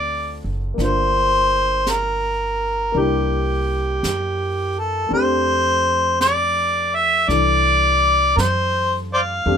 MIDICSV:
0, 0, Header, 1, 5, 480
1, 0, Start_track
1, 0, Key_signature, -1, "major"
1, 0, Tempo, 1083032
1, 349, Time_signature, 4, 2, 24, 8
1, 4243, End_track
2, 0, Start_track
2, 0, Title_t, "Harmonica"
2, 0, Program_c, 0, 22
2, 0, Note_on_c, 0, 74, 70
2, 189, Note_off_c, 0, 74, 0
2, 358, Note_on_c, 0, 72, 74
2, 838, Note_on_c, 0, 70, 63
2, 845, Note_off_c, 0, 72, 0
2, 1323, Note_on_c, 0, 67, 59
2, 1330, Note_off_c, 0, 70, 0
2, 2122, Note_on_c, 0, 69, 60
2, 2129, Note_off_c, 0, 67, 0
2, 2270, Note_off_c, 0, 69, 0
2, 2275, Note_on_c, 0, 72, 75
2, 2734, Note_off_c, 0, 72, 0
2, 2751, Note_on_c, 0, 74, 75
2, 3081, Note_on_c, 0, 76, 75
2, 3088, Note_off_c, 0, 74, 0
2, 3228, Note_on_c, 0, 74, 80
2, 3235, Note_off_c, 0, 76, 0
2, 3708, Note_on_c, 0, 70, 55
2, 3715, Note_off_c, 0, 74, 0
2, 3724, Note_on_c, 0, 72, 76
2, 3730, Note_off_c, 0, 70, 0
2, 3972, Note_off_c, 0, 72, 0
2, 4047, Note_on_c, 0, 72, 53
2, 4047, Note_on_c, 0, 74, 53
2, 4047, Note_on_c, 0, 77, 76
2, 4077, Note_off_c, 0, 72, 0
2, 4078, Note_off_c, 0, 74, 0
2, 4243, Note_off_c, 0, 77, 0
2, 4243, End_track
3, 0, Start_track
3, 0, Title_t, "Grand piano"
3, 0, Program_c, 1, 0
3, 0, Control_c, 1, 64, 127
3, 0, Note_on_c, 1, 60, 40
3, 0, Note_on_c, 1, 62, 37
3, 0, Note_on_c, 1, 65, 38
3, 0, Note_on_c, 1, 69, 43
3, 328, Note_on_c, 1, 58, 42
3, 336, Note_off_c, 1, 62, 0
3, 343, Note_on_c, 1, 62, 37
3, 344, Note_off_c, 1, 60, 0
3, 352, Note_off_c, 1, 65, 0
3, 354, Control_c, 1, 64, 0
3, 356, Note_off_c, 1, 69, 0
3, 360, Note_on_c, 1, 65, 37
3, 375, Note_on_c, 1, 70, 44
3, 429, Control_c, 1, 64, 127
3, 1288, Note_off_c, 1, 58, 0
3, 1295, Note_on_c, 1, 58, 42
3, 1297, Note_off_c, 1, 62, 0
3, 1304, Note_on_c, 1, 62, 37
3, 1309, Note_on_c, 1, 64, 38
3, 1312, Note_off_c, 1, 65, 0
3, 1312, Control_c, 1, 64, 0
3, 1317, Note_on_c, 1, 67, 47
3, 1320, Note_off_c, 1, 70, 0
3, 1393, Control_c, 1, 64, 127
3, 2255, Note_on_c, 1, 57, 42
3, 2260, Note_off_c, 1, 62, 0
3, 2261, Note_off_c, 1, 58, 0
3, 2261, Note_on_c, 1, 60, 38
3, 2267, Note_on_c, 1, 62, 40
3, 2268, Note_off_c, 1, 64, 0
3, 2269, Note_off_c, 1, 67, 0
3, 2273, Control_c, 1, 64, 0
3, 2275, Note_on_c, 1, 67, 47
3, 2362, Control_c, 1, 64, 127
3, 3218, Note_off_c, 1, 62, 0
3, 3225, Note_on_c, 1, 62, 35
3, 3233, Note_on_c, 1, 52, 33
3, 3238, Note_on_c, 1, 69, 37
3, 4186, Note_off_c, 1, 57, 0
3, 4187, Note_off_c, 1, 62, 0
3, 4188, Note_off_c, 1, 60, 0
3, 4192, Note_off_c, 1, 67, 0
3, 4193, Note_on_c, 1, 57, 43
3, 4194, Note_on_c, 1, 60, 40
3, 4194, Note_on_c, 1, 62, 41
3, 4195, Note_off_c, 1, 52, 0
3, 4198, Note_off_c, 1, 69, 0
3, 4199, Note_on_c, 1, 67, 45
3, 4243, Note_off_c, 1, 57, 0
3, 4243, Note_off_c, 1, 60, 0
3, 4243, Note_off_c, 1, 62, 0
3, 4243, Note_off_c, 1, 67, 0
3, 4243, End_track
4, 0, Start_track
4, 0, Title_t, "Upright bass"
4, 0, Program_c, 2, 32
4, 0, Note_on_c, 2, 38, 58
4, 178, Note_off_c, 2, 38, 0
4, 197, Note_on_c, 2, 30, 50
4, 337, Note_off_c, 2, 30, 0
4, 345, Note_on_c, 2, 31, 66
4, 1287, Note_off_c, 2, 31, 0
4, 1306, Note_on_c, 2, 36, 63
4, 1768, Note_off_c, 2, 36, 0
4, 1787, Note_on_c, 2, 42, 62
4, 2249, Note_off_c, 2, 42, 0
4, 2264, Note_on_c, 2, 41, 61
4, 3209, Note_off_c, 2, 41, 0
4, 3228, Note_on_c, 2, 36, 66
4, 3693, Note_off_c, 2, 36, 0
4, 3707, Note_on_c, 2, 42, 65
4, 4174, Note_off_c, 2, 42, 0
4, 4192, Note_on_c, 2, 41, 68
4, 4243, Note_off_c, 2, 41, 0
4, 4243, End_track
5, 0, Start_track
5, 0, Title_t, "Drums"
5, 349, Note_on_c, 9, 25, 31
5, 349, Note_on_c, 9, 38, 23
5, 394, Note_off_c, 9, 38, 0
5, 827, Note_off_c, 9, 25, 0
5, 827, Note_on_c, 9, 25, 29
5, 827, Note_on_c, 9, 38, 32
5, 827, Note_on_c, 9, 44, 47
5, 871, Note_off_c, 9, 38, 0
5, 871, Note_off_c, 9, 44, 0
5, 1307, Note_off_c, 9, 25, 0
5, 1307, Note_on_c, 9, 25, 30
5, 1789, Note_off_c, 9, 25, 0
5, 1789, Note_on_c, 9, 25, 29
5, 1789, Note_on_c, 9, 38, 33
5, 1789, Note_on_c, 9, 44, 46
5, 1834, Note_off_c, 9, 38, 0
5, 1834, Note_off_c, 9, 44, 0
5, 2270, Note_off_c, 9, 25, 0
5, 2270, Note_on_c, 9, 25, 31
5, 2751, Note_off_c, 9, 25, 0
5, 2751, Note_on_c, 9, 25, 32
5, 2751, Note_on_c, 9, 38, 33
5, 2751, Note_on_c, 9, 44, 43
5, 2795, Note_off_c, 9, 38, 0
5, 2795, Note_off_c, 9, 44, 0
5, 3232, Note_off_c, 9, 25, 0
5, 3232, Note_on_c, 9, 25, 28
5, 3232, Note_on_c, 9, 38, 25
5, 3276, Note_off_c, 9, 38, 0
5, 3715, Note_off_c, 9, 25, 0
5, 3715, Note_on_c, 9, 25, 30
5, 3715, Note_on_c, 9, 38, 33
5, 3715, Note_on_c, 9, 44, 37
5, 3760, Note_off_c, 9, 38, 0
5, 3760, Note_off_c, 9, 44, 0
5, 4199, Note_off_c, 9, 25, 0
5, 4199, Note_on_c, 9, 25, 33
5, 4243, Note_off_c, 9, 25, 0
5, 4243, End_track
0, 0, End_of_file